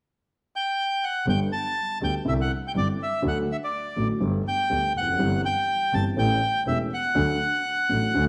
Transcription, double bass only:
1.26 1.48 G1 medium
2.01 2.22 D2 soft
2.26 2.47 C2 medium
2.76 2.96 G1 soft
3.25 3.45 D2 medium
3.97 4.18 A1 soft
4.21 4.42 G1 medium
4.71 4.91 D2 soft
4.95 5.19 F1 soft
5.20 5.40 G1 medium
5.93 6.13 G1 soft
6.17 6.38 A1 medium
6.66 6.87 E1 soft
7.16 7.36 D2 medium
7.90 8.11 A1 soft
8.15 8.28 D2 medium

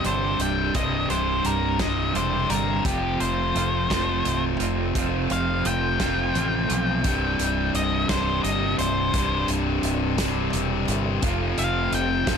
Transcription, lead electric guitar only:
0.06 0.40 C5 medium
0.42 0.75 G5 medium
0.76 1.10 D#5 medium
1.10 1.45 C5 medium
1.46 1.80 A#4 medium
1.81 2.15 D#5 medium
2.16 2.50 C5 medium
2.50 2.84 A#4 medium
2.86 3.20 G4 medium
3.20 4.43 C5 medium
5.32 5.65 F5 medium
5.67 7.72 G5 medium
7.76 8.09 D#5 medium
8.10 8.43 C5 medium
8.44 8.78 D#5 medium
8.78 9.47 C5 medium
11.59 11.92 F5 medium
11.95 12.38 G5 medium

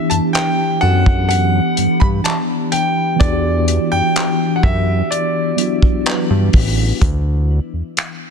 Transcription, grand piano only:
0.00 0.12 E5 loud
0.10 0.15 A5 loud
0.33 0.78 G5 loud
0.81 1.27 F#5 loud
1.29 1.97 F#5 loud
2.00 2.06 B5 loud
2.24 2.35 A5 loud
2.72 3.21 G5 loud
3.20 3.94 D5 loud
3.92 4.52 G5 loud
4.56 4.63 F#5 medium
4.63 5.12 E5 medium
5.11 6.50 D5 medium

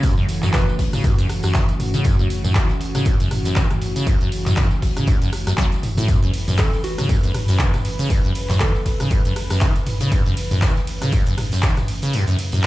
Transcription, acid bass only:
0.03 0.15 F#2 loud
0.17 0.27 F#2 medium
0.43 0.55 F#2 medium
0.54 0.65 E3 medium
0.93 1.06 C#3 medium
1.04 1.16 F#2 loud
1.18 1.27 F#2 medium
1.44 1.56 F#2 medium
1.54 1.66 E3 medium
1.94 2.06 C#3 medium
2.05 2.17 F#2 loud
2.19 2.28 F#2 medium
2.44 2.57 F#2 medium
2.55 2.67 E3 medium
2.95 3.07 C#3 medium
3.06 3.18 F#2 loud
3.20 3.29 F#2 medium
3.45 3.58 F#2 medium
3.56 3.68 E3 medium
3.96 4.08 C#3 medium
4.07 4.18 F#2 loud
4.21 4.30 F#2 medium
4.46 4.59 F#2 medium
4.57 4.69 E3 medium
4.96 5.09 C#3 medium
5.07 5.19 F#2 loud
5.22 5.31 F#2 medium
5.47 5.53 F#2 medium
5.58 5.66 F#3 loud
5.97 6.10 A2 loud
6.08 6.20 F#2 loud
6.23 6.32 F#2 medium
6.48 6.60 F#2 medium
6.59 6.71 E3 medium
6.98 7.11 C#3 medium
7.09 7.21 F#2 loud
7.23 7.32 F#2 medium
7.49 7.61 F#2 medium
7.60 7.71 E3 medium
7.99 8.12 C#3 medium
8.10 8.22 F#2 loud
8.24 8.33 F#2 medium
8.49 8.62 F#2 medium
8.60 8.72 E3 medium
9.00 9.12 C#3 medium
9.11 9.23 F#2 loud
9.25 9.34 F#2 medium
9.50 9.63 F#2 medium
9.61 9.73 E3 medium
10.01 10.13 C#3 medium
10.12 10.24 F#2 loud
10.26 10.35 F#2 medium
10.51 10.64 F#2 medium
10.62 10.74 E3 medium
11.02 11.14 C#3 medium
11.13 11.24 F#2 loud
11.27 11.36 F#2 medium
11.52 11.65 F#2 medium
11.63 11.75 E3 medium
12.02 12.15 C#3 medium
12.13 12.25 F#2 loud
12.28 12.37 F#2 medium
12.53 12.65 F#2 medium

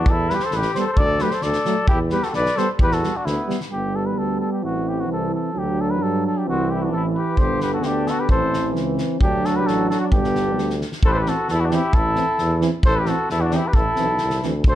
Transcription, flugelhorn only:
0.00 0.13 D4 medium
0.12 0.36 E4 medium
0.34 0.47 G4 medium
0.45 0.58 A4 medium
0.56 0.77 G4 medium
0.79 0.88 A4 medium
0.92 1.03 A4 medium
1.03 1.24 A4 medium
1.23 1.35 G4 medium
1.34 1.43 A4 medium
1.43 1.88 A4 medium
1.89 1.99 E4 medium
2.12 2.26 G4 medium
2.24 2.26 F#4 medium
2.29 2.33 F#4 medium
2.34 2.57 B4 medium
2.55 2.68 A4 medium
2.80 2.92 G4 medium
2.91 3.18 F#4 medium
3.16 3.28 D4 medium
3.26 3.60 B3 medium
6.51 6.75 C4 medium
6.73 6.86 E4 medium
6.84 6.94 D4 medium
6.96 7.05 E4 medium
7.17 7.40 G4 medium
7.40 7.61 G4 medium
7.61 7.73 G4 medium
7.74 7.88 F#4 medium
7.87 8.12 D4 medium
8.10 8.21 F#4 medium
8.20 8.30 G4 medium
8.31 8.73 A4 medium
9.23 9.47 D4 medium
9.46 9.61 F#4 medium
9.59 9.69 G4 medium
9.68 9.91 F#4 medium
9.91 10.01 F#4 medium
10.04 10.08 D4 medium
10.15 10.78 D4 medium
11.05 11.15 G4 medium
11.05 11.10 A4 loud
11.13 11.21 A4 medium
11.20 11.31 G4 medium
11.30 11.51 F#4 medium
11.54 11.66 E4 medium
11.65 11.76 D4 medium
11.75 11.96 E4 medium
11.96 12.63 E4 medium
12.86 13.00 A4 loud
12.99 13.10 G4 medium
13.09 13.30 F#4 medium
13.31 13.44 E4 medium
13.42 13.58 D4 medium
13.56 13.69 E4 medium
13.68 13.78 G4 medium
13.76 14.43 E4 medium
14.70 14.75 A4 medium

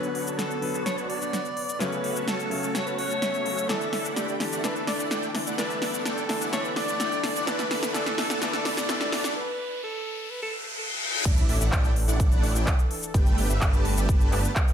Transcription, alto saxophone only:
0.00 0.40 B4 loud
0.39 0.85 A4 loud
0.86 0.99 C#5 loud
0.97 1.11 B4 loud
1.09 1.82 D5 loud
1.80 2.29 B4 loud
2.28 2.76 A4 loud
2.75 2.88 C#5 loud
2.86 3.00 B4 medium
2.98 3.71 C#5 loud
3.69 4.16 A4 loud
4.16 4.65 G4 medium
4.63 4.77 B4 loud
4.75 4.87 A4 medium
4.87 5.28 D5 medium
5.58 6.07 B4 loud
6.05 6.52 A4 medium
6.53 6.66 C#5 loud
6.65 6.78 B4 loud
6.76 7.49 D5 loud
7.47 7.96 B4 loud
7.94 8.41 A4 medium
8.42 8.55 B4 loud
8.54 8.67 A4 medium
8.65 9.36 D5 loud
9.36 9.80 B4 loud
9.83 10.32 A4 medium
10.31 10.42 B4 loud
10.42 10.53 A4 medium

